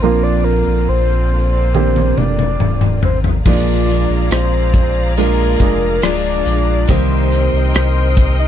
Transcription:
Already playing: string section C4 F4
0.02 sub bass A#1, upright piano A#2 F3 A#3 C4 D4 F4, string section D3 A#3, soft synth lead A#4
0.23 soft synth lead D5
0.44 soft synth lead A#4
0.67 sub bass A#1
0.88 sub bass A#1, soft synth lead C5
1.53 soft synth lead C5
1.74 upright piano A#3 C4 D4 G4, high tom
1.96 high tom
2.17 sub bass F1, soft synth lead D5, mid tom
2.39 mid tom
2.59 sub bass D1, mid tom
2.81 mid tom
3.02 sub bass G#1, soft synth lead C5, floor tom
3.24 floor tom
3.45 sub bass A#1, steel-string acoustic guitar A#2 F3 G#3 D4 F4, upright piano A#2 F3 G#3 A#3 D4 D#4, string section G#4 D5 F5 A#5, soft synth lead D5, kick, crash
3.53 upright piano F4
3.88 steel-string acoustic guitar G#3 D4 F4, closed hi-hat
4.10 sub bass A#1
4.31 sub bass A#1, soft synth lead C5, cross-stick, closed hi-hat
4.74 kick, closed hi-hat
5.16 steel-string acoustic guitar F3 G#3 D4 F4, upright piano G#3 A#3 D4 F4, soft synth lead A#4, closed hi-hat
5.59 sub bass F1, upright piano G#3 A#3 D4 G#4, kick, closed hi-hat
6.02 sub bass D1, steel-string acoustic guitar F3 G#3 D4 F4, soft synth lead D5, cross-stick, closed hi-hat
6.46 sub bass A#1, closed hi-hat
6.87 sub bass C2, steel-string acoustic guitar C3 D#3 A#3 C4 G4, upright piano C3 G3 A#3 C4 D#4 G4, string section A#4 D#5 G5 C6, soft synth lead C5, kick, closed hi-hat
7.32 closed hi-hat
7.53 sub bass C2
7.74 sub bass C2, soft synth lead C5, cross-stick, closed hi-hat
8.17 kick, closed hi-hat
8.40 soft synth lead D#5

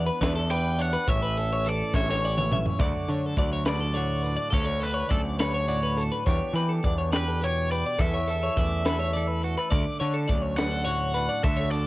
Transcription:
Already playing: clean electric guitar E3 B3 D4
0.06 clean electric guitar B4
0.21 picked electric bass E2, clean electric guitar D4 B4, kick, snare, closed hi-hat
0.36 clean electric guitar A4
0.50 clean electric guitar G4 B4, overdriven electric guitar G5, closed hi-hat
0.79 clean electric guitar D4 C#5, overdriven electric guitar F#5, closed hi-hat
0.93 clean electric guitar B4
1.06 picked electric bass A1, clean electric guitar A2 C#5, overdriven electric guitar E5, kick, closed hi-hat
1.22 clean electric guitar B4
1.37 clean electric guitar C#4 A4, closed hi-hat
1.53 clean electric guitar C#5
1.65 clean electric guitar E3 A4, closed hi-hat
1.69 overdriven electric guitar D5
1.94 picked electric bass A1, clean electric guitar C#4 E5, overdriven electric guitar C#5, kick, snare
2.09 clean electric guitar C#5, snare
2.23 clean electric guitar C#4 D5
2.38 clean electric guitar E4 C#5, mid tom
2.52 clean electric guitar C#4 E5, mid tom
2.66 clean electric guitar C#5, floor tom
2.79 picked electric bass D2, clean electric guitar D3 F#3 A3 D4 F#4 D5, kick, closed hi-hat
3.08 picked electric bass D3, clean electric guitar D4 C#5, closed hi-hat
3.26 clean electric guitar A4
3.36 picked electric bass D2, clean electric guitar F#3 A3 D5, kick, closed hi-hat
3.53 clean electric guitar C#5
3.65 clean electric guitar D4 B4, overdriven electric guitar D5, snare, closed hi-hat
3.80 clean electric guitar A4
3.94 clean electric guitar A2 F#4 C#5, closed hi-hat
4.23 clean electric guitar B4, closed hi-hat
4.27 clean electric guitar D4
4.37 clean electric guitar D5
4.50 picked electric bass D2, clean electric guitar D3 A4, overdriven electric guitar C#5, kick, closed hi-hat
4.65 clean electric guitar C#5
4.80 clean electric guitar D4 A4, overdriven electric guitar B4, closed hi-hat
4.94 clean electric guitar C#5
5.09 picked electric bass D2, clean electric guitar F#3 C#4 D5, overdriven electric guitar A4, kick, closed hi-hat
5.39 clean electric guitar D4 B4, overdriven electric guitar C#5, snare, closed hi-hat
5.54 clean electric guitar C#5
5.68 clean electric guitar A2 F#4 D5, closed hi-hat
5.83 clean electric guitar B4
5.97 clean electric guitar D4 A4, closed hi-hat
6.12 clean electric guitar B4
6.26 picked electric bass E2, clean electric guitar E3 B3 D4 G4 C#5, kick, closed hi-hat
6.54 picked electric bass E3, clean electric guitar G4 B4, closed hi-hat
6.69 clean electric guitar A4
6.84 picked electric bass E2, clean electric guitar B3 D4 D5, kick, closed hi-hat
6.98 clean electric guitar C#5
7.13 clean electric guitar G4 B4, snare, closed hi-hat
7.17 overdriven electric guitar B4
7.28 clean electric guitar A4
7.42 clean electric guitar B2 G4 C#5, overdriven electric guitar C#5, closed hi-hat
7.71 clean electric guitar G4 B4, overdriven electric guitar D5, closed hi-hat
7.86 clean electric guitar D5
7.99 picked electric bass E2, clean electric guitar E3 A4, overdriven electric guitar E5, kick, closed hi-hat
8.14 clean electric guitar C#5
8.27 clean electric guitar A4, closed hi-hat
8.43 clean electric guitar C#5
8.57 picked electric bass E2, clean electric guitar A3 C#4 D5, kick, closed hi-hat
8.85 clean electric guitar A4 B4, snare, closed hi-hat
9.00 clean electric guitar C#5
9.13 clean electric guitar E3 A4 D5, closed hi-hat
9.27 clean electric guitar B4
9.43 clean electric guitar F#4 A4, closed hi-hat
9.57 clean electric guitar A4 B4
9.70 picked electric bass D2, clean electric guitar D3 D5, kick, closed hi-hat
10.00 picked electric bass D3, clean electric guitar D4 C#5, closed hi-hat
10.14 clean electric guitar A4
10.28 picked electric bass D2, clean electric guitar D5, kick, closed hi-hat
10.32 clean electric guitar F#3 C#4
10.42 clean electric guitar C#5
10.57 clean electric guitar D4 B4, overdriven electric guitar F#5, snare, closed hi-hat
10.71 clean electric guitar A4
10.85 clean electric guitar A2 F#4 C#5, closed hi-hat
11.14 clean electric guitar D4 B4, closed hi-hat
11.29 clean electric guitar D5
11.43 picked electric bass D2, clean electric guitar D3 A4, overdriven electric guitar E5, kick, closed hi-hat
11.57 clean electric guitar C#5
11.71 clean electric guitar D4 A4, overdriven electric guitar D5, closed hi-hat

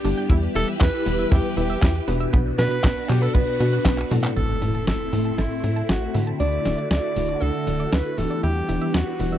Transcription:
Already playing: string machine B3 D4 G4
0.04 analog synth bass G1, tine electric piano G3 B3 E4 G4, synth arpeggio sound D4, open hi-hat
0.17 synth arpeggio sound G5, closed hi-hat
0.30 analog synth bass E2, string machine E3 E4 B4, synth arpeggio sound E4, kick, closed hi-hat
0.55 analog synth bass E1, tine electric piano G3 B3 E4 G4, synth arpeggio sound E4, alto saxophone A4, open hi-hat
0.68 synth arpeggio sound E5, closed hi-hat
0.81 analog synth bass E2, synth arpeggio sound E4, alto saxophone B4, kick, snare, clap, closed hi-hat
1.06 analog synth bass E1, tine electric piano G3 B3 E4 G4, synth arpeggio sound B3, open hi-hat
1.19 synth arpeggio sound E5, closed hi-hat
1.32 analog synth bass E2, synth arpeggio sound E4, alto saxophone G4, kick, snare, closed hi-hat
1.44 closed hi-hat
1.57 analog synth bass E1, tine electric piano G3 B3 E4 G4, synth arpeggio sound E4, alto saxophone G4, open hi-hat
1.70 synth arpeggio sound E5, closed hi-hat
1.82 analog synth bass E2, synth arpeggio sound E4, kick, snare, clap, closed hi-hat
1.95 closed hi-hat
2.08 analog synth bass E1, tine electric piano B2 B3 D4 F#4 B4, synth arpeggio sound B3, open hi-hat
2.20 synth arpeggio sound E5, closed hi-hat
2.33 analog synth bass B1, synth arpeggio sound B3, string machine B3 D4 F#4, kick, closed hi-hat
2.58 analog synth bass B2, tine electric piano B2 B3 D4 F#4 B4, synth arpeggio sound B3, alto saxophone B4, snare, open hi-hat
2.71 synth arpeggio sound B4, closed hi-hat
2.84 analog synth bass B1, synth arpeggio sound B3, kick, snare, clap, closed hi-hat
3.09 analog synth bass B2, tine electric piano B2 B3 D4 F#4 B4, synth arpeggio sound F#3, alto saxophone G4, clap, open hi-hat
3.22 alto saxophone A4, synth arpeggio sound B4, closed hi-hat
3.34 analog synth bass B1, synth arpeggio sound B3, alto saxophone B4, kick, closed hi-hat
3.48 closed hi-hat
3.60 analog synth bass B2, tine electric piano B2 B3 D4 F#4 B4, synth arpeggio sound B3, open hi-hat
3.73 synth arpeggio sound B4, closed hi-hat
3.85 analog synth bass B1, synth arpeggio sound B3, kick, snare, clap, closed hi-hat
3.98 clap, closed hi-hat
4.11 tine electric piano A2 A3 C4 E4 A4, analog synth bass B2, synth arpeggio sound F#3, open hi-hat
4.24 synth arpeggio sound B4, clap, closed hi-hat
4.36 analog synth bass A1, string machine A3 C4 E4, synth arpeggio sound A4, alto saxophone A4, closed hi-hat, impact
4.49 closed hi-hat
4.62 analog synth bass A2, tine electric piano A2 A3 C4 E4 A4, synth arpeggio sound A4, open hi-hat
4.75 synth arpeggio sound A5, closed hi-hat
4.87 analog synth bass A1, synth arpeggio sound A4, alto saxophone A4, snare, closed hi-hat
5.13 tine electric piano A2 A3 C4 E4 A4, analog synth bass A2, synth arpeggio sound E4, open hi-hat
5.25 synth arpeggio sound A5, closed hi-hat
5.38 analog synth bass A1, alto saxophone E4, synth arpeggio sound A4, snare, closed hi-hat
5.51 closed hi-hat
5.64 tine electric piano A2 A3 C4 E4 A4, analog synth bass A2, synth arpeggio sound A4, open hi-hat
5.76 synth arpeggio sound A5, closed hi-hat
5.89 analog synth bass A1, alto saxophone F#4, synth arpeggio sound A4, snare, closed hi-hat
6.02 closed hi-hat
6.14 analog synth bass A2, tine electric piano D3 A3 D4 E4 F#4, synth arpeggio sound E4, open hi-hat
6.27 synth arpeggio sound A5, closed hi-hat
6.40 analog synth bass D2, string machine D3 F#4, synth arpeggio sound D4, alto saxophone D5, closed hi-hat
6.53 closed hi-hat
6.65 analog synth bass D1, tine electric piano D3 A3 D4 E4 F#4, synth arpeggio sound D4, snare, open hi-hat
6.78 synth arpeggio sound D5, closed hi-hat
6.91 analog synth bass D2, synth arpeggio sound D4, alto saxophone D5, snare, closed hi-hat
7.16 analog synth bass D1, tine electric piano D3 A3 D4 E4 F#4, synth arpeggio sound A3, open hi-hat
7.29 synth arpeggio sound D5, closed hi-hat
7.42 analog synth bass D2, synth arpeggio sound D4, alto saxophone A4, closed hi-hat
7.54 closed hi-hat
7.67 analog synth bass D1, tine electric piano D3 A3 D4 E4 F#4, synth arpeggio sound D4, open hi-hat
7.80 synth arpeggio sound D5, closed hi-hat
7.92 analog synth bass D2, synth arpeggio sound D4, alto saxophone B4, snare, closed hi-hat
8.05 closed hi-hat
8.18 analog synth bass D1, tine electric piano E3 B3 D4 E4 G4, synth arpeggio sound A3, alto saxophone A4, open hi-hat
8.30 synth arpeggio sound D5, closed hi-hat
8.43 analog synth bass E2, string machine E3 G3 B3 D4, synth arpeggio sound E4, alto saxophone G4, closed hi-hat
8.56 closed hi-hat
8.69 analog synth bass E1, tine electric piano E3 B3 D4 E4 G4, synth arpeggio sound E4, open hi-hat
8.81 synth arpeggio sound E5, closed hi-hat
8.94 analog synth bass E2, synth arpeggio sound E4, alto saxophone F#4, snare, closed hi-hat
9.20 analog synth bass E1, tine electric piano E3 B3 D4 E4 G4, synth arpeggio sound B3, open hi-hat
9.32 synth arpeggio sound E5, closed hi-hat

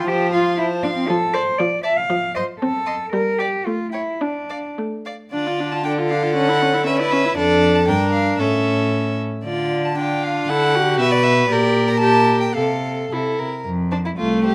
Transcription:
0.07 viola F3, cello G4, violin C5 A5
0.32 cello F4, violin F5 C6
0.58 cello E4, violin C5 A5
0.82 cello D4, violin F5 C6
0.97 cello C4
1.08 viola F3, cello A4
1.33 cello C5, violin D5 A5
1.58 viola F3, cello D5
1.83 violin D5 A5, cello E5
1.97 cello F5
2.10 viola F3
2.35 cello C5, violin D#5 C6
2.61 viola C4, cello A4
2.86 violin D#5 C6
3.12 viola G3, cello A#4
3.39 cello G4, violin D5 G5
3.66 viola A3, cello F4
3.92 cello E4, violin C#5 G5
4.21 cello D4, viola D4
4.50 violin D5 F5
4.79 viola A3
5.05 violin D5 F5
5.32 cello D3, viola D4, violin F4 D5
5.46 viola F4
5.60 viola D4
5.72 viola F4, violin A5
5.85 viola D4, violin A4 G5
5.98 viola F4
6.09 viola D4, violin F5
6.23 viola F4
6.34 viola C#4, violin F#5
6.49 viola E4
6.62 viola C#4
6.73 viola E4
6.86 viola C#4, violin B4 E5
6.99 viola E4, violin D5
7.11 viola C#4, violin E5
7.25 viola E4
7.37 cello F2, viola D4, violin A4 D5
7.75 violin A5
7.88 cello G2, viola D4, violin A#4 G5
8.12 violin F5
8.39 cello A2, viola C#4, violin A4 E5
9.44 cello D3, viola F4, violin D5
9.85 violin A5
9.98 viola D4, violin F4 G5
10.24 violin F5
10.49 cello D3, viola E4, violin A4 F#5
10.75 viola F#4, violin G4
10.99 cello B2, violin B4 E5
11.11 violin D5
11.23 violin E5
11.49 cello A#2, viola G4, violin A#4 D5
11.88 violin A#5
11.99 viola G4, violin A5
12.41 violin G5
12.54 cello C3, viola A4, violin A4 F5
13.11 cello C3, viola E4, violin A4
13.39 violin A#4
13.66 cello F2
13.91 violin D4 C5
14.05 violin E4
14.18 cello C2, viola A3, violin F4
14.43 violin G4 C5

